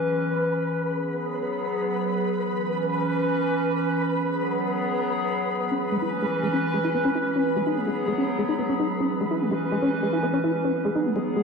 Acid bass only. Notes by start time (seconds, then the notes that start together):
5.71 C#4
5.92 G#3
6.02 E4
6.12 G#3
6.22 G#3
6.43 G#3
6.53 C#4
6.74 G#3
6.84 E4
6.94 B3
7.05 C#4
7.15 E4
7.36 C#4
7.56 G#3
7.67 D#4
7.77 G#3
7.87 G#3
8.08 G#3
8.18 C#4
8.38 G#3
8.49 D#4
8.59 B3
8.69 C#4
8.79 D#4
9.00 C#4
9.21 G#3
9.31 E4
9.41 G#3
9.51 G#3
9.72 G#3
9.82 C#4
10.03 G#3
10.13 E4
10.23 B3
10.33 C#4
10.44 E4
10.64 C#4
10.85 G#3
10.95 D#4
11.06 G#3
11.16 G#3
11.36 G#3